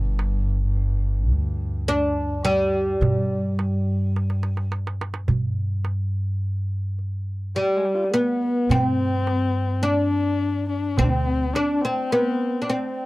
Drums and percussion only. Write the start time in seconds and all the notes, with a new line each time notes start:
0.19 darbuka tek
0.77 darbuka ka
1.33 darbuka ka
2.45 darbuka tek
2.74 darbuka ka
3.02 darbuka dum
3.59 darbuka tek
4.16 darbuka tek
4.30 darbuka ka
4.43 darbuka tek
4.57 darbuka ka
4.72 darbuka tek
4.87 darbuka ka
5.01 darbuka tek
5.14 darbuka ka
5.28 darbuka dum
5.85 darbuka tek
6.99 darbuka ka
7.56 darbuka ka
8.14 darbuka tek
8.43 darbuka ka
8.70 darbuka dum
8.99 darbuka ka
9.27 darbuka tek
10.98 darbuka dum
11.55 darbuka tek
12.12 darbuka ka
12.70 darbuka ka